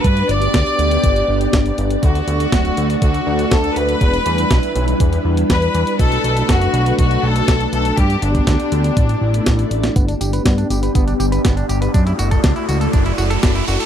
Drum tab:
HH |xxxxxxxxxx-xxxxx|xxxxxxxxxx-xxxxx|xxxxxxxxxx-xxxxx|xxxxxxxxxx-xxxxx|
TB |----------------|----------------|----------------|----------------|
SD |----o-------o---|----o-------o---|----o-------o---|----o-------o---|
BD |o---o---o---o---|o---o---o---o---|o---o---o---o---|o---o---o---o---|

HH |xxxxxxxxxx-xxxxx|xxxxxxxxxxxxxxxx|xxxxxxxxxxxxxxxx|
TB |----------------|xxxxxxxxxxxxxxxx|xxxxxxxxxxxxxxxx|
SD |----o-------o--o|----o-------o---|----o-------o---|
BD |o--oo---o---o---|o---o---o---o---|o--oo---o---o---|